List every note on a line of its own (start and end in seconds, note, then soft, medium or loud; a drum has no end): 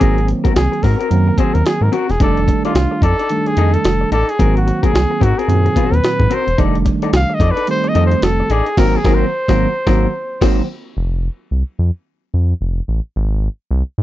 0.00 0.33 G#1 loud
0.00 0.84 D#3 medium
0.00 0.83 F#3 medium
0.00 0.84 A#3 medium
0.00 0.18 C4 loud
0.00 0.84 C4 medium
0.00 0.19 F#4 loud
0.00 0.29 G#4 loud
0.00 0.19 A#4 medium
0.00 kick loud
0.00 closed hi-hat medium
0.18 closed hi-hat soft
0.28 muted clean electric guitar stroke soft
0.28 closed hi-hat medium
0.44 0.54 C4 medium
0.44 0.54 F#4 medium
0.44 0.54 A#4 medium
0.44 kick loud
0.44 closed hi-hat soft
0.55 0.68 C2 loud
0.55 0.85 G#4 medium
0.55 muted clean electric guitar stroke soft
0.55 snare loud
0.55 closed hi-hat medium
0.72 muted clean electric guitar stroke soft
0.72 closed hi-hat soft
0.83 0.95 G#2 loud
0.83 0.98 C4 medium
0.83 0.98 F#4 medium
0.83 1.00 A#4 medium
0.83 0.98 A#4 medium
0.83 kick medium
0.83 open hi-hat medium
0.99 1.10 C4 soft
0.99 1.09 F#4 soft
0.99 1.09 A#4 medium
0.99 1.40 A#4 medium
0.99 closed hi-hat medium
1.10 1.31 F#2 loud
1.10 1.93 D#3 medium
1.10 1.93 F#3 medium
1.10 1.93 A#3 medium
1.10 1.93 C4 medium
1.10 closed hi-hat medium
1.28 muted clean electric guitar stroke medium
1.38 1.56 C4 loud
1.38 1.55 F#4 loud
1.38 1.56 G#4 medium
1.38 1.55 C5 loud
1.38 kick loud
1.38 closed hi-hat medium
1.54 1.63 D#2 loud
1.54 1.67 A#4 medium
1.54 muted clean electric guitar stroke soft
1.54 closed hi-hat soft
1.65 1.85 G#4 medium
1.65 muted clean electric guitar stroke soft
1.65 snare loud
1.65 closed hi-hat medium
1.81 1.89 G#2 medium
1.81 1.95 A#4 medium
1.81 muted clean electric guitar stroke soft
1.92 2.10 C4 medium
1.92 2.09 F#4 medium
1.92 2.12 F#4 medium
1.92 2.08 A#4 medium
1.92 closed hi-hat medium
2.09 2.17 E1 medium
2.09 2.21 G#4 medium
2.09 muted clean electric guitar stroke medium
2.09 snare soft
2.09 closed hi-hat soft
2.20 2.52 F1 loud
2.20 3.03 D#3 medium
2.20 3.03 G3 medium
2.20 3.03 A3 medium
2.20 3.03 D4 medium
2.20 2.38 D#4 medium
2.20 2.38 A4 medium
2.20 2.62 A4 medium
2.20 2.39 D5 loud
2.20 kick loud
2.20 closed hi-hat medium
2.37 closed hi-hat soft
2.48 muted clean electric guitar stroke medium
2.48 kick medium
2.48 closed hi-hat medium
2.65 2.74 D#4 medium
2.65 3.00 F4 medium
2.65 2.74 A4 medium
2.65 2.74 D5 medium
2.65 closed hi-hat soft
2.75 2.87 C2 medium
2.75 muted clean electric guitar stroke soft
2.75 snare loud
2.75 closed hi-hat medium
2.91 muted clean electric guitar stroke soft
3.02 3.14 F2 medium
3.02 3.16 D#4 medium
3.02 3.17 A4 medium
3.02 3.48 A4 loud
3.02 3.17 D5 medium
3.02 kick medium
3.02 closed hi-hat medium
3.19 3.29 D#4 soft
3.19 3.29 A4 medium
3.19 3.28 D5 medium
3.19 closed hi-hat soft
3.29 4.12 D#3 medium
3.29 4.12 G3 medium
3.29 4.12 A3 medium
3.29 4.12 D4 medium
3.29 closed hi-hat medium
3.46 3.75 G#4 loud
3.46 muted clean electric guitar stroke soft
3.46 closed hi-hat soft
3.57 3.77 F2 medium
3.57 3.75 D#4 loud
3.57 3.73 A4 loud
3.57 3.73 D#5 loud
3.57 closed hi-hat medium
3.74 4.12 A4 loud
3.74 muted clean electric guitar stroke soft
3.74 closed hi-hat soft
3.84 4.05 F1 medium
3.84 muted clean electric guitar stroke soft
3.84 snare loud
3.84 closed hi-hat loud
4.01 muted clean electric guitar stroke soft
4.11 4.24 A1 medium
4.11 4.29 D#4 medium
4.11 4.28 A4 medium
4.11 4.31 A4 loud
4.11 4.27 D5 medium
4.11 closed hi-hat medium
4.29 4.56 G#4 loud
4.29 muted clean electric guitar stroke soft
4.29 closed hi-hat soft
4.39 4.71 G#1 loud
4.39 5.22 D#3 medium
4.39 5.22 F#3 medium
4.39 5.22 A#3 medium
4.39 4.57 C4 medium
4.39 5.22 C4 medium
4.39 4.57 F#4 medium
4.39 4.57 A#4 medium
4.39 kick loud
4.39 closed hi-hat medium
4.57 4.86 F#4 medium
4.57 closed hi-hat soft
4.67 muted clean electric guitar stroke soft
4.67 closed hi-hat medium
4.83 4.92 C4 medium
4.83 4.92 F#4 medium
4.83 5.25 G#4 loud
4.83 4.92 A#4 medium
4.83 kick loud
4.83 closed hi-hat soft
4.93 5.06 C2 loud
4.93 muted clean electric guitar stroke soft
4.93 snare loud
4.93 closed hi-hat medium
5.11 muted clean electric guitar stroke soft
5.21 5.33 G#2 loud
5.21 5.35 C4 medium
5.21 5.35 F#4 medium
5.21 5.40 F#4 loud
5.21 5.36 A#4 medium
5.21 kick medium
5.21 closed hi-hat medium
5.38 5.48 C4 soft
5.38 5.48 F#4 medium
5.38 5.96 G#4 medium
5.38 5.47 A#4 medium
5.38 closed hi-hat soft
5.48 5.68 F#2 loud
5.48 6.31 A#2 medium
5.48 6.31 D#3 medium
5.48 6.31 F#3 medium
5.48 6.31 C4 medium
5.48 closed hi-hat medium
5.66 muted clean electric guitar stroke soft
5.66 closed hi-hat soft
5.76 5.97 C4 medium
5.76 5.92 F#4 loud
5.76 5.92 C5 medium
5.76 kick medium
5.76 closed hi-hat medium
5.92 6.00 D#2 loud
5.92 6.36 B4 loud
5.92 muted clean electric guitar stroke soft
5.92 closed hi-hat soft
6.04 muted clean electric guitar stroke soft
6.04 snare loud
6.04 closed hi-hat loud
6.19 6.28 G#2 loud
6.19 muted clean electric guitar stroke soft
6.19 kick medium
6.30 6.48 C4 medium
6.30 6.47 F#4 medium
6.30 6.46 A#4 medium
6.30 closed hi-hat medium
6.34 6.60 C5 loud
6.47 6.55 E1 loud
6.47 muted clean electric guitar stroke soft
6.47 closed hi-hat soft
6.58 6.90 F1 loud
6.58 7.41 D#3 medium
6.58 7.41 G3 medium
6.58 7.41 A3 medium
6.58 7.41 D4 medium
6.58 6.76 D#4 medium
6.58 6.76 A4 loud
6.58 6.76 D5 medium
6.58 kick loud
6.58 closed hi-hat medium
6.75 closed hi-hat soft
6.85 muted clean electric guitar stroke soft
6.85 kick medium
6.85 closed hi-hat medium
7.02 7.12 D#4 medium
7.02 7.12 A4 medium
7.02 7.12 D5 medium
7.02 closed hi-hat medium
7.13 7.25 C2 medium
7.13 7.36 F5 loud
7.13 muted clean electric guitar stroke soft
7.13 snare loud
7.13 closed hi-hat medium
7.30 muted clean electric guitar stroke soft
7.34 7.52 D#5 medium
7.39 7.52 F2 loud
7.39 7.54 D#4 medium
7.39 7.55 A4 medium
7.39 7.55 D5 medium
7.39 kick medium
7.39 closed hi-hat medium
7.51 7.68 B4 loud
7.56 7.66 D#4 medium
7.56 7.66 A4 medium
7.56 7.66 D5 medium
7.56 closed hi-hat medium
7.67 8.50 D#3 medium
7.67 8.50 G3 medium
7.67 8.50 A3 medium
7.67 8.50 C4 medium
7.67 7.90 C5 loud
7.67 closed hi-hat medium
7.84 muted clean electric guitar stroke medium
7.84 closed hi-hat soft
7.88 8.05 D#5 loud
7.95 8.15 F2 loud
7.95 8.12 D#4 medium
7.95 8.12 A4 medium
7.95 8.12 D#5 medium
7.95 closed hi-hat medium
8.06 8.25 C5 loud
8.11 muted clean electric guitar stroke medium
8.11 closed hi-hat soft
8.22 8.42 F1 medium
8.22 8.53 A4 loud
8.22 muted clean electric guitar stroke soft
8.22 snare loud
8.22 closed hi-hat loud
8.40 muted clean electric guitar stroke soft
8.50 8.62 A1 medium
8.50 8.68 D#4 medium
8.50 8.80 G#4 medium
8.50 8.68 A4 loud
8.50 8.67 D5 loud
8.50 closed hi-hat medium
8.66 muted clean electric guitar stroke soft
8.66 closed hi-hat soft
8.77 8.97 G#1 loud
8.77 8.97 D#3 loud
8.77 8.97 F#3 loud
8.77 8.97 A#3 loud
8.77 8.97 C4 loud
8.77 8.98 C4 loud
8.77 8.98 F#4 loud
8.77 8.98 A#4 loud
8.77 kick loud
8.77 snare loud
8.77 crash medium
8.97 9.16 G#4 medium
9.04 9.24 G#1 loud
9.04 9.24 D#3 loud
9.04 9.24 F#3 loud
9.04 9.24 A#3 loud
9.04 9.24 C4 loud
9.04 9.25 C4 loud
9.04 9.25 F#4 loud
9.04 9.24 A#4 loud
9.04 kick loud
9.04 snare loud
9.14 10.51 C5 medium
9.48 9.66 G#1 loud
9.48 9.66 D#3 medium
9.48 9.66 F#3 medium
9.48 9.66 A#3 medium
9.48 9.66 C4 medium
9.48 9.67 F#4 medium
9.48 9.67 A#4 loud
9.48 kick medium
9.48 snare medium
9.87 10.06 G#1 loud
9.87 10.06 D#3 loud
9.87 10.06 F#3 medium
9.87 10.06 A#3 loud
9.87 10.07 C4 loud
9.87 10.07 F#4 medium
9.87 10.06 A#4 loud
9.87 kick loud
9.87 snare loud
10.41 10.61 G#1 loud
10.41 10.61 D#3 loud
10.41 10.61 F#3 loud
10.41 10.61 A#3 loud
10.41 10.61 C4 loud
10.41 10.61 F#4 medium
10.41 10.61 C5 loud
10.41 kick loud
10.41 snare loud
10.41 crash medium
10.97 11.29 F1 loud
11.51 11.63 C2 medium
11.79 11.91 F2 loud
12.34 12.54 F2 medium
12.61 12.81 F1 medium
12.88 13.00 A1 medium
13.16 13.48 G#1 loud
13.71 13.83 C2 loud
13.98 14.03 G#2 loud